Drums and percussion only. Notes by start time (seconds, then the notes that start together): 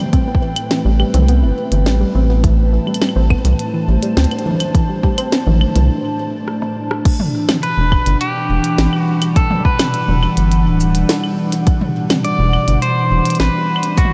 0.06 mid tom
0.13 kick, closed hi-hat
0.35 kick
0.56 closed hi-hat, claves
0.71 snare, closed hi-hat
1.00 claves
1.14 closed hi-hat, mid tom
1.29 closed hi-hat
1.72 closed hi-hat
1.86 snare, closed hi-hat
2.44 kick, closed hi-hat
2.87 claves
2.94 closed hi-hat, claves
3.02 snare, claves
3.09 claves
3.30 kick, claves
3.45 closed hi-hat
3.59 closed hi-hat
4.03 closed hi-hat
4.17 snare, closed hi-hat
4.24 closed hi-hat
4.31 closed hi-hat, claves
4.39 closed hi-hat
4.46 mid tom
4.51 mid tom
4.55 mid tom
4.60 closed hi-hat, mid tom, claves
4.65 mid tom
4.70 mid tom
4.75 kick, closed hi-hat
5.03 kick
5.18 closed hi-hat, claves
5.32 snare, closed hi-hat
5.47 mid tom
5.54 mid tom
5.61 mid tom, claves
5.68 mid tom
5.76 closed hi-hat, mid tom
6.48 cross-stick
6.62 cross-stick
6.91 cross-stick
7.05 kick, closed hi-hat, crash
7.20 mid tom
7.49 snare, closed hi-hat, mid tom, claves
7.63 closed hi-hat
7.92 kick, claves
8.06 closed hi-hat
8.21 closed hi-hat
8.64 closed hi-hat
8.78 snare, closed hi-hat
8.93 claves
9.22 closed hi-hat, claves
9.36 kick, closed hi-hat
9.51 mid tom
9.55 mid tom
9.60 mid tom
9.65 kick
9.79 snare, closed hi-hat, mid tom, claves, shaker
9.94 closed hi-hat
10.08 mid tom
10.23 claves
10.37 closed hi-hat
10.52 closed hi-hat
10.80 shaker
10.95 closed hi-hat
11.09 snare, closed hi-hat
11.24 claves
11.52 closed hi-hat
11.67 kick, closed hi-hat
11.81 mid tom
12.10 snare, closed hi-hat, mid tom, claves
12.25 closed hi-hat
12.53 claves
12.68 closed hi-hat
12.82 closed hi-hat
13.25 closed hi-hat
13.30 closed hi-hat
13.35 closed hi-hat
13.40 snare, closed hi-hat
13.76 claves
13.83 closed hi-hat
13.98 kick, closed hi-hat, shaker
14.05 mid tom